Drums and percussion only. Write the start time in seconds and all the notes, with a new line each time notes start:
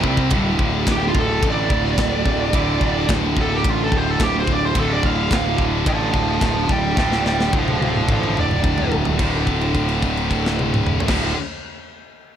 0.04 kick
0.17 kick
0.30 kick, ride bell
0.59 kick
0.87 kick, snare, ride bell
1.15 kick
1.43 kick, ride bell
1.70 kick
1.98 kick, snare, ride bell
2.26 kick
2.53 kick, ride bell
2.81 kick
3.09 kick, snare, ride bell
3.37 kick
3.64 kick, ride bell
3.92 kick
4.20 kick, snare, ride bell
4.47 kick
4.75 kick, ride bell
5.03 kick
5.31 kick, snare, ride bell
5.58 kick
5.86 kick, ride bell
6.14 kick
6.41 kick, snare, ride bell
6.69 kick
6.97 kick, snare
7.12 snare
7.26 snare
7.41 snare
7.53 kick, high tom
7.68 high tom
7.82 high tom
7.96 mid tom
8.09 kick, mid tom
8.23 mid tom
8.37 mid tom
8.51 mid tom
8.64 kick, mid tom
8.78 floor tom
8.92 floor tom
9.05 floor tom
9.19 kick, crash
9.47 kick, crash
9.61 crash
9.75 kick, crash
9.89 crash
10.02 kick, crash
10.17 crash
10.31 kick, crash
10.46 snare
10.59 high tom
10.74 mid tom
10.87 mid tom
11.00 floor tom
11.08 kick, snare, crash